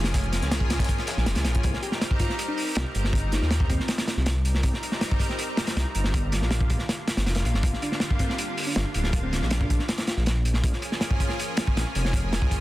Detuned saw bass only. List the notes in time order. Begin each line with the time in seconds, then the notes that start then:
Already playing: F1
0.42 C#2
0.70 C#2
1.17 A#1
1.26 F1
1.36 C#2
1.45 A#1
1.64 C2
2.76 C2
2.95 G1
3.42 D#2
3.70 D#2
4.17 C2
4.64 C2
5.77 C2
5.95 G1
6.42 A#1
6.70 A#1
7.17 G1
7.27 F1
7.45 A#1
7.55 G1
7.63 G1
8.76 G1
8.95 D1
9.42 A#1
9.70 A#1
10.17 A#1
10.64 A#1
11.77 A#1
11.95 F1
12.42 C#2